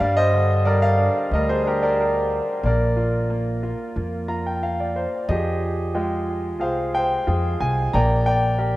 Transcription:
0.00 1.07 G2 medium
0.00 0.64 G3 medium
0.00 0.16 D5 medium
0.00 0.17 F5 medium
0.17 0.63 C5 medium
0.17 0.67 D#5 loud
0.33 1.60 D3 soft
0.65 1.30 G3 soft
0.65 0.82 A#4 medium
0.65 0.82 D5 medium
0.82 1.29 D5 medium
0.82 1.28 F5 medium
0.98 1.62 D4 medium
1.31 2.38 D2 medium
1.31 2.59 G3 soft
1.31 1.49 A#4 medium
1.31 1.48 D#5 medium
1.49 1.64 G#4 medium
1.49 1.64 C5 medium
1.63 2.60 D4 soft
1.63 1.82 A#4 medium
1.68 1.82 G4 medium
1.83 1.98 A#4 medium
1.83 1.99 D5 medium
2.00 2.61 G4 soft
2.00 2.65 A#4 medium
2.63 3.71 A#1 medium
2.63 3.29 A#3 medium
2.63 4.60 A#4 medium
2.63 4.60 D5 medium
2.97 3.62 F4 medium
3.30 3.94 A#3 soft
3.63 4.27 F4 medium
3.96 5.04 F2 medium
3.96 5.25 A#3 soft
4.28 5.26 F4 soft
4.28 4.44 A#5 medium
4.47 4.62 G5 medium
4.63 4.78 F5 medium
4.80 4.95 D5 soft
4.96 5.27 C5 medium
5.29 6.61 F2 loud
5.29 7.90 F3 medium
5.29 6.59 G4 medium
5.29 6.59 G#4 soft
5.29 6.66 D#5 medium
5.94 6.60 G#3 medium
5.94 6.58 F4 soft
5.94 6.59 G5 soft
6.59 7.15 C2 medium
6.59 7.25 F4 soft
6.59 7.25 G#4 soft
6.59 6.95 C5 medium
6.59 6.96 F5 medium
6.59 6.93 G5 soft
6.95 7.91 C5 medium
6.95 7.63 G5 medium
7.27 7.55 F2 medium
7.27 7.92 F4 medium
7.27 7.92 G#4 medium
7.60 7.88 C2 medium
7.60 7.95 G#5 medium
7.93 8.77 A#1 loud
7.93 8.77 A#3 medium
7.93 8.26 D5 medium
7.93 8.25 G5 medium
7.93 8.28 A#5 medium
8.26 8.57 D5 medium
8.26 8.77 G5 medium
8.58 8.77 G4 soft
8.58 8.77 A#4 soft
8.58 8.77 D5 soft

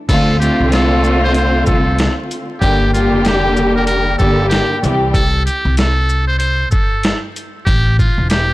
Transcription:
0.09 0.48 D2 loud
0.09 0.37 D3 medium
0.09 0.37 A3 medium
0.09 0.38 C4 medium
0.09 0.38 F4 loud
0.09 0.37 A4 loud
0.09 kick loud
0.09 closed hi-hat medium
0.09 crash loud
0.38 2.45 D3 loud
0.38 2.45 A3 loud
0.38 2.46 C4 loud
0.38 2.46 F4 loud
0.38 0.68 G4 medium
0.38 closed hi-hat medium
0.38 shaker medium
0.60 1.63 C2 medium
0.72 1.20 A4 medium
0.72 snare loud
0.72 closed hi-hat medium
1.04 shaker medium
1.24 1.35 C5 medium
1.34 1.64 C5 medium
1.34 closed hi-hat medium
1.66 2.06 C2 loud
1.66 2.14 A4 medium
1.66 kick loud
1.66 shaker medium
1.99 snare loud
1.99 closed hi-hat medium
2.31 closed hi-hat medium
2.31 shaker medium
2.60 3.12 G1 loud
2.60 2.90 D3 medium
2.60 2.91 G3 medium
2.60 2.91 A#3 medium
2.60 2.90 G4 loud
2.60 2.91 G4 loud
2.60 kick loud
2.60 closed hi-hat medium
2.93 4.11 D3 loud
2.93 4.11 G3 loud
2.93 4.11 A#3 loud
2.93 3.22 F4 medium
2.93 4.12 G4 loud
2.93 closed hi-hat medium
2.93 shaker medium
3.12 4.16 F1 medium
3.25 3.73 G4 medium
3.25 snare loud
3.25 closed hi-hat medium
3.57 shaker medium
3.75 3.86 A#4 medium
3.87 4.16 A#4 medium
3.87 closed hi-hat medium
4.18 4.59 G1 medium
4.18 4.78 D3 loud
4.18 4.78 G3 medium
4.18 4.78 A#3 medium
4.18 4.78 G4 loud
4.18 4.47 A4 medium
4.18 kick loud
4.18 shaker medium
4.49 4.78 G4 loud
4.49 snare loud
4.49 closed hi-hat medium
4.83 5.46 C2 loud
4.83 5.12 E3 medium
4.83 5.12 G3 medium
4.83 5.13 C4 medium
4.83 5.13 G4 medium
4.83 closed hi-hat medium
4.83 shaker medium
5.14 5.43 A4 loud
5.14 kick loud
5.14 closed hi-hat loud
5.46 5.74 G4 medium
5.46 closed hi-hat medium
5.46 shaker medium
5.65 6.73 C2 loud
5.77 6.25 A4 medium
5.77 snare loud
5.77 closed hi-hat medium
6.09 shaker medium
6.27 6.38 C5 medium
6.39 6.68 C5 medium
6.39 closed hi-hat medium
6.71 7.11 G1 loud
6.71 7.19 A4 medium
6.71 kick loud
6.71 shaker medium
7.03 snare loud
7.03 closed hi-hat medium
7.36 closed hi-hat medium
7.36 shaker medium
7.66 8.06 A1 loud
7.66 7.95 G4 loud
7.66 kick loud
7.66 closed hi-hat medium
7.99 8.27 F4 medium
7.99 kick loud
7.99 shaker medium
8.18 8.54 E1 loud
8.30 8.54 G4 medium
8.30 snare loud
8.30 closed hi-hat medium

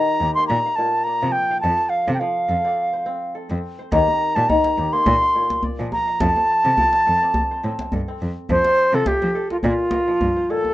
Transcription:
0.00 0.54 D#3 medium
0.00 0.45 F4 medium
0.00 0.22 G4 medium
0.00 0.79 A#4 medium
0.00 0.34 A#5 medium
0.21 0.29 D#2 medium
0.21 1.63 G4 medium
0.35 1.69 A#3 medium
0.35 1.56 C5 soft
0.35 0.47 C6 loud
0.47 0.58 A#2 medium
0.47 0.77 A#5 medium
0.66 1.50 F5 medium
0.76 1.69 A#2 medium
0.76 1.05 A5 medium
1.04 2.17 D5 medium
1.04 1.33 A#5 medium
1.22 1.30 C3 medium
1.22 1.62 F3 medium
1.32 1.60 G5 medium
1.51 2.51 F5 medium
1.61 1.72 F2 medium
1.61 2.19 F3 medium
1.61 2.07 A4 medium
1.61 1.91 A5 medium
1.79 2.93 C5 medium
1.89 2.13 F5 medium
2.07 2.16 C3 medium
2.07 2.49 A4 medium
2.14 2.21 G5 medium
2.20 3.97 F3 medium
2.20 3.34 F5 medium
2.49 2.57 F2 medium
2.49 3.34 A4 medium
2.64 3.05 C4 medium
2.64 3.75 D5 medium
2.93 3.79 C5 medium
3.06 3.50 C4 medium
3.35 4.14 A4 medium
3.50 3.58 F2 medium
3.50 5.31 C4 medium
3.79 4.93 C5 medium
3.92 4.00 D#2 medium
3.92 4.48 D#3 medium
3.92 4.37 G4 medium
3.92 4.37 A#5 medium
3.92 djembe slap medium
3.92 djembe bass medium
4.08 5.35 A#4 medium
4.08 djembe tone medium
4.35 4.44 A#2 medium
4.35 4.78 G4 medium
4.35 4.50 A5 loud
4.49 5.11 D#3 medium
4.49 4.94 A#5 medium
4.49 djembe tone medium
4.49 djembe bass medium
4.64 djembe slap medium
4.78 4.86 D#2 medium
4.78 6.20 G4 medium
4.78 djembe slap soft
4.93 6.27 A#3 medium
4.93 6.12 C5 medium
4.93 5.63 C6 medium
5.06 5.15 A#2 loud
5.06 djembe tone medium
5.06 djembe bass medium
5.22 6.07 F5 medium
5.36 6.26 A#2 medium
5.50 djembe slap medium
5.50 djembe tone medium
5.63 6.74 D5 medium
5.63 djembe bass medium
5.79 5.87 A#2 medium
5.79 6.20 F3 medium
5.92 6.22 A#5 medium
5.92 djembe tone medium
6.07 7.07 F5 medium
6.20 6.29 F2 medium
6.20 6.76 F3 medium
6.20 6.64 A4 medium
6.20 7.92 A5 loud
6.20 djembe slap medium
6.20 djembe bass medium
6.36 7.51 C5 medium
6.36 djembe tone medium
6.65 6.73 C3 medium
6.65 7.07 A4 medium
6.78 8.49 F3 medium
6.78 djembe tone medium
6.78 djembe bass medium
6.93 djembe slap medium
7.07 7.16 F2 medium
7.07 7.92 A4 medium
7.22 7.63 C4 medium
7.22 8.33 D5 medium
7.22 djembe slap soft
7.34 djembe tone medium
7.34 djembe bass medium
7.51 8.70 C5 medium
7.63 7.72 A2 medium
7.63 8.08 C4 medium
7.63 djembe slap soft
7.79 djembe slap medium
7.79 djembe tone medium
7.92 8.01 G2 medium
7.92 9.07 A4 medium
7.92 djembe bass medium
8.08 9.88 C4 medium
8.08 djembe slap soft
8.21 8.29 F2 medium
8.21 djembe slap soft
8.49 8.58 F2 medium
8.49 9.69 F3 medium
8.49 8.96 C5 loud
8.49 djembe bass medium
8.65 9.76 D5 medium
8.65 djembe slap medium
8.93 9.01 C3 medium
8.93 10.45 F4 medium
8.93 9.09 A4 loud
9.06 9.51 G4 medium
9.06 9.34 A4 medium
9.06 djembe slap medium
9.06 djembe bass medium
9.22 9.30 F3 medium
9.22 10.36 C5 medium
9.22 djembe tone medium
9.35 9.70 A4 medium
9.50 9.57 F4 medium
9.50 9.92 A#4 medium
9.50 djembe slap soft
9.63 10.49 A#2 medium
9.63 9.72 A#2 loud
9.63 10.52 F4 medium
9.63 10.64 F5 medium
9.63 djembe bass medium
9.91 10.74 A#4 medium
9.91 djembe slap medium
9.91 djembe tone medium
10.08 10.74 F3 medium
10.21 10.29 G2 medium
10.21 djembe bass medium
10.37 10.74 C5 medium
10.50 10.74 A#2 medium
10.50 10.74 A4 loud
10.65 djembe tone medium

